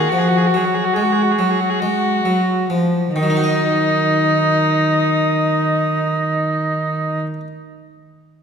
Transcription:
Already playing: D#3 D#4 F#4
0.00 G#4
0.09 F3 F#4
0.18 G#4
0.28 F#4
0.37 G#4
0.47 F#4
0.54 F#3 G#4
0.65 F#4
0.74 G#4
0.84 F#4
0.93 G#3 G#4
1.03 F#4
1.12 G#4
1.22 F#4
1.31 G#4
1.39 F#3 F#4
1.51 G#4
1.60 F#4
1.70 G#4
1.80 G#3 F#4
2.25 F#3
2.70 F3
3.15 D#3 D#4 D#5
3.23 F#3
3.30 D#4
3.37 F#4
3.44 D#5

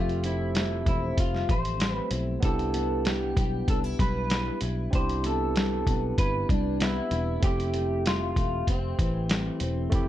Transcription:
Already playing: F1 F3 A3 C4 F4 G4 E5
0.09 closed hi-hat
0.23 C4 E4, closed hi-hat
0.55 A3, snare, closed hi-hat
0.86 E1 C4 E4, kick, closed hi-hat
1.17 F1 F4, kick, closed hi-hat
1.35 snare
1.49 A1 A3 C5, kick, closed hi-hat
1.65 closed hi-hat
1.80 C4, snare, closed hi-hat
1.92 B4
2.11 B1 E4, closed hi-hat
2.40 C2 B3 D4 E4, kick, closed hi-hat
2.45 G4 A4
2.59 closed hi-hat
2.74 B3, closed hi-hat
3.05 G3 G4, snare, closed hi-hat
3.36 B1 B3 G4, kick, closed hi-hat
3.68 C2 D4 A4, kick, closed hi-hat
3.84 E4
3.99 B1 G3 B4, kick, closed hi-hat
4.30 snare, closed hi-hat
4.61 B1 E4, closed hi-hat
4.91 C2 C4 D4 E4, kick, closed hi-hat
4.95 G4 C5
5.09 closed hi-hat
5.24 B3 A4, closed hi-hat
5.56 G3, snare, closed hi-hat
5.87 B1 B3, kick, closed hi-hat
6.18 G1 E4 B4, kick, closed hi-hat
6.49 C2 G3 D4, kick, closed hi-hat
6.80 B3 E4, snare, closed hi-hat
7.11 E1 E4, closed hi-hat
7.40 F1 A3 C4 G4 E5, kick, closed hi-hat
7.46 G4
7.60 closed hi-hat
7.74 A3, closed hi-hat
8.06 F4, snare, closed hi-hat
8.36 E1 A3, kick, closed hi-hat
8.67 F1 C4, kick, closed hi-hat
8.99 A1 E3, kick, closed hi-hat
9.29 A3, snare, closed hi-hat
9.60 E1 C4, closed hi-hat
9.90 F1 A3 C4 E4, kick, closed hi-hat
9.95 G4

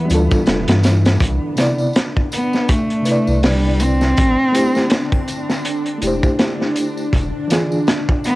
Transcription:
Already playing: E3 B3 E5
0.05 G3 D4
0.10 D2 F4, closed hi-hat, tambourine
0.14 A4
0.31 kick, tambourine
0.46 F1, snare, closed hi-hat, tambourine
0.68 G2, snare, closed hi-hat
0.83 snare, closed hi-hat, tambourine
1.05 snare, closed hi-hat, tambourine
1.19 C2 D4, kick, closed hi-hat, tambourine
1.56 C3 B3 E4, snare, closed hi-hat, tambourine
1.60 D5
1.78 tambourine
1.93 snare, closed hi-hat, tambourine
2.17 kick
2.32 B3, closed hi-hat, tambourine
2.53 snare, tambourine
2.68 A3, kick, closed hi-hat, tambourine
2.90 closed hi-hat
3.02 C3 B4, closed hi-hat, tambourine
3.08 E4 D5
3.27 C2, tambourine
3.43 G3, snare, open hi-hat, tambourine
3.80 C4, closed hi-hat, tambourine
4.01 snare, tambourine, triangle
4.17 A1, kick, closed hi-hat, tambourine
4.52 A3 E4 G4, closed hi-hat, tambourine
4.56 C5
4.75 snare, tambourine
4.90 snare, closed hi-hat, tambourine
5.12 kick, triangle
5.28 closed hi-hat, tambourine
5.50 snare, tambourine
5.65 closed hi-hat, tambourine
5.86 closed hi-hat
5.98 E1 A3 E4, closed hi-hat
6.03 G4, tambourine
6.07 C5
6.23 kick, tambourine
6.39 snare, closed hi-hat, tambourine
6.62 snare
6.76 closed hi-hat, tambourine
6.98 tambourine
7.13 E1, kick, closed hi-hat, tambourine
7.48 E3 D4 F4, closed hi-hat, tambourine
7.52 G#4, snare
7.72 tambourine
7.87 snare, closed hi-hat, tambourine
8.09 kick
8.24 B3, closed hi-hat, tambourine

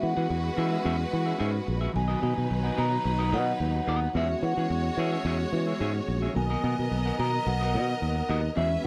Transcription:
Already playing: C#3 E3 G#3 B3 C#4 F#4 B4
0.01 E3 F#5, muted clean electric guitar stroke
0.17 E3 C#4 F#4 G#4 F#5
0.30 E2, muted clean electric guitar stroke
0.44 muted clean electric guitar stroke
0.57 E3 C#4 F#4 G#4 E5
0.72 C#4 F#4 G#4 E5
0.84 E2 C#4 F#4 G#4 E5
0.99 muted clean electric guitar stroke
1.12 E3, muted clean electric guitar stroke
1.26 C#4 F#4 G#4 E5
1.38 G#2 C#4 F#4 G#4 E5
1.53 muted clean electric guitar stroke
1.66 A#1, muted clean electric guitar stroke
1.81 C#4 F#4 G#4 E5
1.93 B1 B2 D#3 F#3 B3 D#4 F#4 B4 G#5, muted clean electric guitar stroke
2.08 B3 F#4 A#4 D#5
2.21 B2 B3 F#4 A#4 D#5
2.37 B2, muted clean electric guitar stroke
2.49 B1, muted clean electric guitar stroke
2.63 B3 F#4 A#4 F#5
2.77 B2 B3 F#4 A#4 D#5 A#5
2.91 muted clean electric guitar stroke
3.05 B1, muted clean electric guitar stroke
3.19 B3 F#4 A#4 D#5
3.31 B2 B3 F#4 A#4 D#5 F#5
3.60 D#2
3.75 muted clean electric guitar stroke
3.87 D#2 B3 F#4 A#4 D#5
4.02 muted clean electric guitar stroke
4.13 E2 C#3 E3 G#3 B3 C#4 F4 F#4 G#4 C#5 E5
4.23 F#4
4.30 muted clean electric guitar stroke
4.43 E3 F#5, muted clean electric guitar stroke
4.57 E3 C#4 F#4 G#4 F#5
4.70 E2, muted clean electric guitar stroke
4.84 muted clean electric guitar stroke
4.97 E3 C#4 F#4 G#4 E5
5.12 C#4 F#4 G#4 E5
5.25 E2 C#4 F#4 G#4 E5
5.40 muted clean electric guitar stroke
5.52 E3 G#3 B3 C#4 F#4, muted clean electric guitar stroke
5.67 C#4 F#4 G#4 E5
5.80 G#2 C#4 F#4 G#4 E5
5.95 muted clean electric guitar stroke
6.07 A#1, muted clean electric guitar stroke
6.22 C#4 F#4 G#4 E5
6.33 B1 B2 D#3 F#3 A#3 B3 D#4 F#4 A#4 D#5 G#5, muted clean electric guitar stroke
6.50 B3 F#4 A#4 D#5
6.64 B2 B3 F#4 A#4 D#5
6.78 B2, muted clean electric guitar stroke
6.91 B1, muted clean electric guitar stroke
7.06 B3 F#4 A#4 F#5
7.18 B2 B3 F#4 A#4 D#5 A#5
7.34 muted clean electric guitar stroke
7.47 B1 F#5, muted clean electric guitar stroke
7.61 B3 F#4 A#4 D#5
7.74 B2 B3 F#4 A#4 D#5
7.88 muted clean electric guitar stroke
8.02 D#2
8.16 muted clean electric guitar stroke
8.29 D#2 B3 F#4 A#4 D#5
8.43 muted clean electric guitar stroke
8.55 E2 C#3 E3 G#3 B3 C#4 F#4 G#4 B4 E5
8.71 muted clean electric guitar stroke

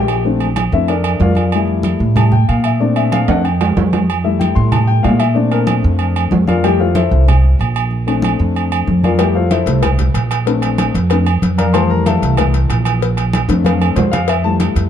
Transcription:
Already playing: A#1 G4 G5
0.08 high conga, low agogo
0.25 A3 C4 D4, high conga
0.40 high conga, low agogo
0.56 high conga, low agogo
0.72 F2 A3 C4 D4 E4 E5, high conga
0.88 D4 A4 A#4 D5, high conga, low agogo
1.04 high conga, low agogo
1.20 F2 F4 A#4 D5 F5, high conga, low timbale
1.35 high conga, low agogo
1.52 G3 A3 E4, high conga, low agogo
1.67 high conga
1.83 high conga, low agogo
1.99 A2, high conga
2.16 G3 A3 E4 A5, high conga, low conga, low agogo
2.32 G5, high conga, low conga
2.48 A#2 F5, high conga, low agogo
2.64 E5, high conga, low agogo
2.80 A3 C4 D4 D5, high conga
2.96 E5, high conga, low agogo
3.12 F5, high conga, low agogo
3.28 F2 A3 C4 D4 F#5, high conga, high timbale
3.44 G5, high conga, low agogo
3.61 high conga, low timbale, low agogo
3.77 F2, high conga, low timbale
3.93 high conga, low timbale, low agogo
4.09 high conga, low agogo
4.24 G3 A3 E4 E5, high conga
4.40 G5, high conga, low agogo
4.55 A2 C6, high conga
4.72 A5, high conga, low conga, low agogo
4.87 G5, high conga
5.03 A#2 G3 A3 E4 F5, high conga, low timbale, low agogo
5.19 E5, high conga, low agogo
5.34 A3 C4 D4 D5, high conga
5.52 A#4, high conga, low agogo
5.67 high conga, low agogo
5.83 F2, high conga
5.99 high conga, low agogo
6.16 high conga, low agogo
6.31 F2, high conga, low timbale
6.47 F4 A#4 D5 F5, high conga, low agogo
6.63 G3 A3 E4 G4 G5, high conga, low agogo
6.80 F4 A4 C5 F5, high conga
6.95 E4 A4 C5 E5, high conga, low agogo
7.11 C2, high conga
7.28 high conga, low conga, low agogo
7.44 high conga
7.59 A#1, high conga, low agogo
7.75 high conga, low agogo
7.91 high conga
8.07 A3 C4 D4, high conga, low agogo
8.22 high conga, low agogo
8.39 F2, high conga
8.55 high conga, low agogo
8.71 high conga, low agogo
8.87 F2, high conga
9.04 F4 A#4 D5 F5, high conga, low agogo
9.19 G3 A3 E4 G4 G5, cowbell, high conga, low agogo
9.35 F4 A4 C5 F5, high conga
9.51 E4 A4 C5 E5, cowbell, high conga, low agogo
9.66 C2 G3 A3 E4, cowbell, high conga
9.83 cowbell, high conga, low conga, low agogo
9.99 cowbell, high conga, low conga
10.14 A#1, cowbell, high conga, low agogo
10.31 cowbell, high conga, low agogo
10.46 A3 C4 D4, cowbell, high conga
10.62 cowbell, high conga, low agogo
10.78 cowbell, high conga, low agogo
10.94 F2, cowbell, high conga
11.10 A3 C4 D4, cowbell, high conga, low agogo
11.26 high conga, low agogo
11.42 F2, cowbell, high conga
11.58 A#4 D5 F5 A#5, cowbell, high conga, low agogo
11.73 E3 G3 A3 C5 F5 A5 C6, cowbell, high conga, low agogo
11.90 A#4 A#5, high conga
12.06 A4 E5 F5 A5, cowbell, high conga, low agogo
12.22 C2, cowbell, high conga
12.37 G3 A3 E4, cowbell, high conga, low conga, low agogo
12.54 cowbell, high conga
12.70 A#1, cowbell, high conga, low agogo
12.85 cowbell, high conga, low agogo
13.01 cowbell, high conga
13.17 cowbell, high conga, low agogo
13.33 cowbell, high conga, low agogo
13.48 F2 A3 C4 D4, cowbell, high conga
13.64 F5, cowbell, high conga, low agogo
13.81 A4, low agogo
13.96 F2 C5, cowbell, low conga, low timbale
14.12 F5, cowbell, low conga, low agogo
14.28 E5, cowbell, high conga, low agogo
14.44 G3 A3 E4 A5, high conga
14.60 cowbell, high conga, low agogo
14.76 F2, cowbell, high conga

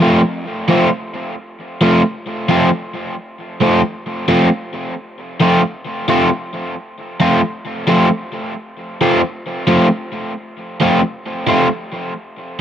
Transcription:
0.00 F3 A3 C4 F4
0.69 F3 A3 C4 F4
1.81 F3 A3 C4 F4
2.49 F3 A3 C4 F4
3.61 F3 A3 C4 F4
4.28 F3 A3 C4 F4
5.40 F3 A3 C4 F4
6.08 F3 A3 C4 F4
7.20 F3 A3 C4 F4
7.87 F3 A3 C4 F4
9.01 F3 A3 C4 F4
9.67 F3 A3 C4 F4
10.81 F3 A3 C4 F4
11.47 F3 A3 C4 F4

